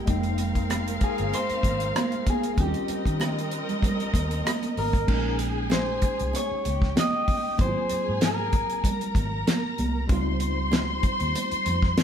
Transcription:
0.06 0.98 F1 medium
0.06 2.53 G#3 medium
0.06 2.54 A#3 medium
0.06 2.54 C4 medium
0.06 2.55 D#4 medium
0.06 2.54 A#4 medium
0.06 2.55 F5 medium
0.06 kick medium
0.06 closed hi-hat medium
0.06 muted conga soft
0.10 2.55 G5 medium
0.23 closed hi-hat soft
0.38 closed hi-hat medium
0.38 muted conga soft
0.55 kick medium
0.55 closed hi-hat soft
0.70 cross-stick medium
0.70 closed hi-hat medium
0.70 high conga medium
0.88 closed hi-hat medium
1.01 1.35 G#4 medium
1.01 kick medium
1.01 closed hi-hat medium
1.18 1.32 G1 medium
1.18 closed hi-hat soft
1.33 2.31 C5 loud
1.33 closed hi-hat medium
1.33 muted conga soft
1.50 muted fingered electric bass stroke soft
1.50 closed hi-hat soft
1.63 1.91 G#1 medium
1.63 kick medium
1.63 closed hi-hat medium
1.63 muted conga soft
1.80 cross-stick soft
1.80 closed hi-hat medium
1.95 cross-stick loud
1.95 closed hi-hat medium
1.95 high conga medium
2.12 closed hi-hat soft
2.12 high conga soft
2.26 2.60 G#4 medium
2.26 kick medium
2.26 closed hi-hat medium
2.26 high conga medium
2.44 closed hi-hat soft
2.56 2.73 D#2 medium
2.56 5.04 G3 medium
2.56 5.04 C4 medium
2.56 5.04 C4 soft
2.56 5.05 C#4 medium
2.56 5.05 A#4 medium
2.56 5.04 D#5 medium
2.56 kick medium
2.56 closed hi-hat medium
2.56 muted conga soft
2.61 2.66 D#4 soft
2.61 4.43 G4 medium
2.67 5.09 F4 medium
2.74 closed hi-hat soft
2.88 muted fingered electric bass stroke soft
2.88 closed hi-hat medium
2.88 muted conga soft
3.06 3.60 D#3 medium
3.06 kick medium
3.06 closed hi-hat soft
3.20 cross-stick loud
3.20 closed hi-hat medium
3.20 high conga medium
3.39 closed hi-hat soft
3.51 closed hi-hat medium
3.69 closed hi-hat soft
3.69 low conga medium
3.83 kick medium
3.83 closed hi-hat medium
3.83 muted conga soft
3.83 low conga medium
4.00 closed hi-hat soft
4.14 4.41 D#2 medium
4.14 kick medium
4.14 closed hi-hat medium
4.14 muted conga soft
4.31 closed hi-hat medium
4.45 cross-stick loud
4.45 closed hi-hat medium
4.45 high conga medium
4.62 closed hi-hat soft
4.62 high conga medium
4.77 5.05 G#1 medium
4.77 5.37 A#4 medium
4.77 open hi-hat medium
4.77 high conga medium
4.93 kick medium
4.93 closed hi-hat soft
5.06 5.99 A#1 medium
5.06 7.54 G#3 medium
5.06 7.55 A#3 medium
5.06 7.56 C#4 soft
5.06 6.62 G#4 medium
5.06 6.62 G#5 medium
5.06 kick loud
5.06 crash medium
5.06 muted conga soft
5.11 7.56 D#4 medium
5.39 closed hi-hat medium
5.39 muted conga soft
5.70 6.36 C5 medium
5.70 snare loud
5.70 closed hi-hat medium
5.70 high conga medium
6.02 muted fingered electric bass stroke soft
6.02 kick medium
6.02 closed hi-hat medium
6.19 6.33 C2 medium
6.19 closed hi-hat soft
6.33 6.99 C#5 loud
6.33 closed hi-hat medium
6.33 muted conga medium
6.51 muted fingered electric bass stroke soft
6.65 6.93 C#2 medium
6.65 7.58 G4 medium
6.65 7.58 G5 medium
6.65 closed hi-hat medium
6.65 muted conga soft
6.82 kick medium
6.82 snare soft
6.96 7.61 D#5 loud
6.96 snare loud
6.96 closed hi-hat medium
6.96 high conga medium
7.28 kick medium
7.28 open hi-hat soft
7.28 high conga medium
7.57 7.74 G#1 medium
7.57 10.05 F#3 medium
7.57 10.05 A#3 medium
7.57 10.06 C4 medium
7.57 8.81 G#4 medium
7.57 8.24 C5 loud
7.57 8.81 G#5 medium
7.57 kick loud
7.57 closed hi-hat medium
7.57 muted conga soft
7.62 7.68 E4 soft
7.68 10.10 F4 medium
7.89 muted fingered electric bass stroke soft
7.89 closed hi-hat medium
8.09 8.62 G#2 medium
8.21 9.76 A#4 medium
8.21 snare loud
8.21 closed hi-hat medium
8.21 high conga medium
8.53 kick medium
8.53 closed hi-hat medium
8.70 closed hi-hat soft
8.83 10.07 A#4 medium
8.83 10.07 A#5 medium
8.83 kick medium
8.83 closed hi-hat medium
8.83 muted conga soft
8.83 low conga medium
9.01 closed hi-hat soft
9.15 9.43 G#1 medium
9.15 kick medium
9.15 closed hi-hat medium
9.15 muted conga soft
9.47 snare loud
9.47 closed hi-hat medium
9.47 high conga medium
9.78 10.06 C2 medium
9.78 closed hi-hat medium
9.78 high conga medium
10.08 11.00 C#2 loud
10.08 12.03 G3 medium
10.08 12.03 C4 medium
10.08 12.03 D#4 medium
10.08 12.03 C5 medium
10.08 12.03 C6 medium
10.08 kick loud
10.08 closed hi-hat medium
10.08 muted conga medium
10.13 12.03 F4 medium
10.40 closed hi-hat medium
10.40 muted conga soft
10.71 snare medium
10.71 closed hi-hat medium
10.71 high conga medium
11.03 muted fingered electric bass stroke soft
11.03 kick medium
11.03 closed hi-hat medium
11.20 11.33 D#2 medium
11.20 closed hi-hat soft
11.35 closed hi-hat medium
11.35 muted conga soft
11.51 muted fingered electric bass stroke soft
11.51 closed hi-hat medium
11.66 11.93 F2 medium
11.66 closed hi-hat medium
11.66 muted conga soft
11.82 kick medium
11.82 snare soft
11.97 snare loud
11.97 closed hi-hat loud
11.97 high conga medium

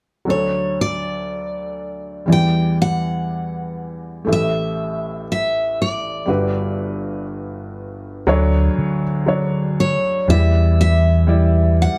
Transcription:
0.25 2.24 D2 soft
0.25 2.24 D3 soft
0.25 2.23 F#3 soft
0.25 2.24 D4 soft
0.25 2.25 A4 soft
0.30 0.80 C#5 medium
0.81 2.32 D5 medium
2.26 4.24 E2 soft
2.26 4.24 E3 soft
2.26 4.23 G3 soft
2.26 4.24 E4 soft
2.26 4.25 D5 soft
2.32 2.77 G5 medium
2.82 4.26 F#5 medium
4.25 6.24 A1 soft
4.25 6.24 A2 soft
4.25 6.22 A3 soft
4.25 6.23 G4 soft
4.25 6.24 E5 soft
4.33 5.26 E5 medium
5.32 5.81 E5 medium
5.82 7.26 D5 medium
6.26 8.24 G1 soft
6.26 8.24 G2 soft
6.26 8.23 G3 soft
6.26 8.25 F#4 soft
6.30 8.25 B4 soft
8.27 8.67 D2 medium
8.27 10.24 D2 medium
8.27 10.24 D3 medium
8.27 9.02 F#3 medium
8.27 9.02 D4 medium
8.27 9.03 C#5 medium
8.78 9.97 D3 medium
9.26 10.02 F#3 medium
9.26 10.02 D4 medium
9.26 10.03 C#5 medium
9.80 10.30 C#5 medium
10.28 11.86 E2 medium
10.28 11.98 E2 soft
10.28 11.98 E3 soft
10.28 11.02 G3 medium
10.28 11.03 E4 soft
10.28 11.03 D5 medium
10.28 10.80 E5 medium
10.81 11.75 E5 medium
11.27 11.98 G3 medium
11.27 11.98 E4 medium
11.27 11.98 D5 medium
11.82 11.98 F#5 medium

